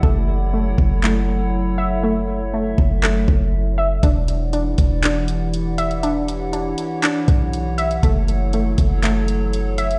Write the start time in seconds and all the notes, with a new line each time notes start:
Already playing: E4 F#5
0.03 F#1 F#3 A3 A4 C#5, kick
0.54 A3
0.78 F#1, kick
1.03 A3, clap
1.78 E5
2.03 A3 E5
2.54 A3
2.78 F#1, kick
3.03 A3, clap
3.28 F#1, kick
3.78 E5
4.03 E1 E3 D4 E4 G4 D5 F#5, kick, closed hi-hat
4.28 closed hi-hat
4.53 D4, closed hi-hat
4.78 E1, kick, closed hi-hat
5.03 D4, clap, closed hi-hat
5.28 closed hi-hat
5.54 closed hi-hat
5.78 E5, closed hi-hat
5.91 closed hi-hat
6.03 D4 C#5, closed hi-hat
6.28 closed hi-hat
6.53 D4, closed hi-hat
6.78 closed hi-hat
7.03 D4, clap, closed hi-hat
7.28 B1, kick, closed hi-hat
7.53 closed hi-hat
7.78 E5, closed hi-hat
7.91 closed hi-hat
8.03 F#1 F#3 A3 A4 C#5, kick, closed hi-hat
8.28 closed hi-hat
8.53 A3, closed hi-hat
8.78 F#1, kick, closed hi-hat
9.03 A3, clap, closed hi-hat
9.28 closed hi-hat
9.53 closed hi-hat
9.78 E5, closed hi-hat
9.91 closed hi-hat